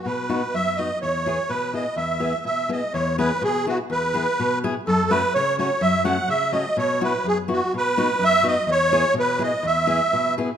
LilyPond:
<<
  \new Staff \with { instrumentName = "Accordion" } { \time 2/4 \key e \major \tempo 4 = 125 b'4 e''8 dis''8 | cis''4 b'8 dis''8 | e''4 e''8 dis''8 | cis''8 b'8 gis'8 fis'8 |
b'4. r8 | a'8 b'8 cis''8 cis''8 | e''8 fis''8 e''8 dis''8 | cis''8 b'8 gis'8 fis'8 |
b'4 e''8 dis''8 | cis''4 b'8 dis''8 | e''4. r8 | }
  \new Staff \with { instrumentName = "Steel-string acoustic guitar" } { \time 2/4 \key e \major << { r8 <b dis' fis'>8 r8 <b dis' fis'>8 | r8 <b e' gis'>8 r8 <b e' gis'>8 | r8 <b e' gis'>8 r8 <b e' gis'>8 | r8 <b e' gis'>8 r8 <b e' gis'>8 |
r8 <b e' gis'>8 r8 <b e' gis'>8 | r8 <a cis' fis'>8 r8 <a cis' fis'>8 | r8 <a cis' fis'>8 r8 <a cis' fis'>8 | r8 <b e' fis'>8 r8 <b e' fis'>8 |
r8 <b dis' fis'>8 r8 <b dis' fis'>8 | r8 <b e' gis'>8 r8 <b e' gis'>8 | r8 <b e' gis'>8 r8 <b e' gis'>8 | } \\ { b,4 fis,4 | e,4 b,4 | e,4 b,4 | e,4 b,4 |
e,4 b,4 | fis,4 cis4 | fis,4 cis4 | b,4 fis,4 |
b,4 fis,4 | e,4 b,4 | e,4 b,4 | } >> }
>>